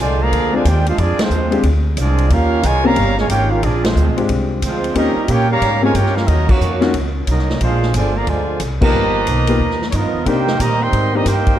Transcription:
0.00 upright bass C2, trombone section D3 F3 G#3, trumpet section F4 C5 D5 G#5
0.22 trombone section D3 F3 A#3, trumpet section G#4 D5 F5 A#5
0.32 upright bass D2, kick, ride
0.53 trombone section D3 F3 G#3, grand piano G#3 C4 D4 F4 G#4, trumpet section F4 C5 D5 G#5
0.65 upright bass D#2, trombone section G#3 D4 G4, trumpet section F4 C5 D5 G5, kick, hi-hat pedal, ride
0.86 trombone section G#3 D4 F4, trumpet section D4 G#4 C5 F5, ride
0.97 upright bass F2, trombone section F3 G#3 D4, trumpet section C4 F4 G#4 D5, kick, ride
1.19 trombone section F3 G#3 C4, trumpet section G#3 D4 F4 C5, muted upright bass stroke, snare, ride
1.30 upright bass D#2, hi-hat pedal
1.51 grand piano G#3 C4 D4 F4 G4, ride
1.63 upright bass D2, kick, ride
1.97 upright bass C2, trombone section F3 G#3 D4, trumpet section C4 F4 G#4 D5, kick, hi-hat pedal, ride
2.18 ride
2.30 upright bass D#2, trombone section A#3 C#4 F4, trumpet section C#4 G4 A#4 F5, kick, ride
2.63 upright bass C2, trombone section G#3, trumpet section F4 A#4 C#5 G#5, kick, hi-hat pedal, ride
2.84 trombone section C#3 G3 A#3, grand piano A#3 C4 C#4 F4 G4, trumpet section G4 C#5 F5 A#5
2.96 upright bass G1, kick, ride
3.17 trombone section G#3, trumpet section F4 A#4 C#5 G#5, snare
3.28 upright bass G#1, trombone section A#3 C#4 G4, trumpet section F4 A#4 C#5 G5, kick, hi-hat pedal, ride
3.50 trombone section A#3 C#4 F4, trumpet section C#4 G4 A#4 F5
3.62 upright bass A#1, trombone section F3 G#3 D4, trumpet section C4 F4 G#4 D5, kick, ride
3.83 trombone section F3 G#3 C4, trumpet section G#3 D4 F4 C5, snare, ride
3.95 upright bass D2, hi-hat pedal
4.06 upright bass A#1
4.17 upright bass G#1, grand piano G#3 C4 D4 F4 G4, ride
4.29 upright bass C2, kick, ride
4.62 upright bass D2, trombone section F3 G#3 C4, trumpet section G#3 D4 F4 C5, kick, hi-hat pedal, ride
4.84 ride
4.95 upright bass D#2, trombone section G3 A#3 D#4, grand piano A#3 C4 C#4 F4 G4, trumpet section C#4 G4 A#4 D#5, kick, ride
5.16 muted upright bass stroke
5.28 upright bass A#2, trombone section A#3 C#4 G4, trumpet section F4 A#4 C#5 G5, kick, hi-hat pedal, ride
5.50 trombone section C#3 G3 A#3, trumpet section G4 C#5 F5 A#5
5.61 upright bass G#2, kick, ride
5.81 trombone section G#3, grand piano A#3 C4 C#4 F4 G4, trumpet section F4 A#4 C#5 G#5
5.94 upright bass G2, trombone section A#3 C#4 G4, trumpet section F4 A#4 C#5 G5, kick, hi-hat pedal, ride
6.06 snare
6.16 trombone section A#3 C#4 F4, trumpet section C#4 G4 A#4 F5, snare
6.28 upright bass D#2, trombone section F#3 A#3 D#4, trumpet section C#4 F#4 A#4 D#5, kick, ride
6.49 trombone section A#3 C#4 F#4, trumpet section A#3 D#4 F#4 C#5, kick, crash
6.60 upright bass F2, hi-hat pedal
6.81 grand piano A#3 C#4 D#4 F4 F#4, snare, ride
6.94 upright bass C#2, kick, ride
7.27 upright bass C2, trombone section F#3 A#3 D#4, trumpet section C#4 F#4 A#4 D#5, kick, hi-hat pedal, ride
7.39 snare
7.50 snare
7.60 upright bass A#1, trombone section G#3 D4 F4, trumpet section D4 G#4 C5 F5, kick, ride
7.82 snare
7.94 upright bass G1, trombone section D3 F3 G#3, trumpet section F4 C5 D5 G#5, kick, hi-hat pedal, ride
8.16 trombone section D3 F3 A#3, trumpet section G#4 D5 F5 A#5
8.27 upright bass D2, trombone section D3 F3 G#3, trumpet section F4 C5 D5 G#5, kick, ride
8.60 upright bass C2, kick, hi-hat pedal, ride
8.81 trombone section D#3 F3 A#3, grand piano A#3 B3 D#4 F4 G4, trumpet section F4 B4 D#5 A#5, kick, crash
8.93 upright bass G1
9.26 upright bass B1, kick, hi-hat pedal, ride
9.47 grand piano A#3 B3 D#4 F4 G4, ride
9.59 upright bass D#2, kick
9.71 snare
9.82 snare
9.90 upright bass G2, trombone section F3 B3 D#4, trumpet section C#5, kick, hi-hat pedal, ride
9.95 trumpet section B3 F4 A#4 D#5
10.03 upright bass F2
10.14 upright bass D#2
10.25 upright bass C3, grand piano A#3 C4 D4 D#4 G4, trombone section A#3 D#4 G4, trumpet section D#4 A#4 C5 G5, kick, ride
10.48 snare
10.59 upright bass A#2, trombone section D#3 G3 A#3, trumpet section G4 C5 D#5 A#5, kick, hi-hat pedal, ride
10.80 trombone section D#3 G3 C4, trumpet section A#4 D#5 G5 C6
10.92 upright bass G#2, kick, ride
11.12 trombone section D#3 G3 A#3, grand piano A#3 C4 D4 D#4 G4, trumpet section G4 C5 D#5 A#5
11.24 upright bass G2, trombone section A#3 D#4 G4, trumpet section C5 G5, kick, snare, hi-hat pedal, ride
11.28 trumpet section D#4 A#4
11.47 kick, ride

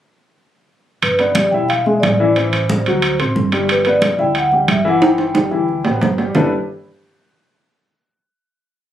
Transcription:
1.02 upright bass G1, vibraphone B4, high conga, high timbale
1.19 upright piano B3 B4, vibraphone D5, high conga, high timbale
1.35 upright piano G3 G4, high conga, high timbale
1.51 upright bass E1, upright piano E4 E5, vibraphone G5, high conga
1.69 vibraphone F5, high conga, high timbale
1.84 upright piano G#3 G#4, vibraphone E5, high conga
2.00 upright bass A1, vibraphone D5, high conga, high timbale, low timbale
2.17 upright piano E3 E4, vibraphone D5
2.35 upright piano E3 E4, vibraphone C5, high conga, high timbale
2.53 high conga, high timbale
2.70 upright piano G3 G4, high conga
2.86 upright bass D2, upright piano F#3 F#4, high conga, high timbale
3.02 high conga, high timbale
3.19 upright bass A1, upright piano C4 C5, high conga, high timbale
3.36 upright bass G1, high conga
3.52 upright piano G3 G4, high conga, high timbale
3.69 vibraphone B4, high conga, high timbale
3.85 upright piano B3 B4, vibraphone D5, high conga, high timbale
4.02 upright piano G3 G4, high conga, high timbale
4.18 upright bass D2, upright piano E4 E5, vibraphone G5, high conga
4.35 vibraphone F#5, high conga, high timbale
4.52 upright piano G3 G4, vibraphone G5, high conga
4.68 upright bass G1, vibraphone E5, high conga, high timbale
4.85 upright piano E3 E4, vibraphone F#5
5.02 upright piano E3 E4, vibraphone G5, high conga, high timbale
5.18 high conga, high timbale
5.34 upright piano G3 G4, high conga, high timbale
5.51 upright bass D2, upright piano E3 E4, high conga
5.68 high conga
5.85 upright bass A1, upright piano B3 B4, high conga, low timbale
6.01 upright bass G1, high conga, low timbale
6.18 upright piano G3 G4, high conga, low timbale
6.35 upright bass G1, upright piano G3 D4 E4 G4 A4 B4, low conga, low timbale

